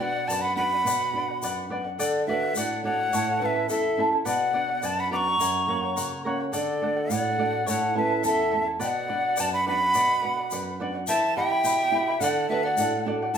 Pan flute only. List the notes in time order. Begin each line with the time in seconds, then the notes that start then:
0.00 D5
0.26 D5
0.41 F#5
0.55 F#5
1.99 A4
2.28 B4
2.56 D5
2.83 C#5
3.41 B4
3.69 A4
4.25 D5
4.82 D5
4.98 F#5
5.11 A#5
6.53 A4
7.12 D5
7.69 C#5
7.97 B4
8.26 A4
8.83 D5
9.40 D5
9.54 F#5
9.68 F#5
11.07 E5
11.36 E5
12.21 D5
12.50 B4
12.64 D5